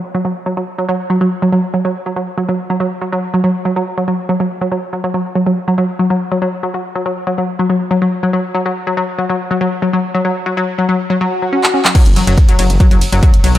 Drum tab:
CC |----------------|----------------|----------------|----------------|
RD |----------------|----------------|----------------|----------------|
HH |----------------|----------------|----------------|----------------|
CP |----------------|----------------|----------------|----------------|
T2 |----------------|----------------|----------------|----------------|
BD |----------------|----------------|----------------|----------------|

CC |----------------|----------------|----------------|x---------------|
RD |----------------|----------------|----------------|x-x-x-x-x-x-x-x-|
HH |----------------|----------------|----------------|xxoxxxoxxxoxxxox|
CP |----------------|----------------|-------------x-x|----------------|
T2 |----------------|----------------|----------------|--o----o----o---|
BD |----------------|----------------|----------------|o---o---o---o---|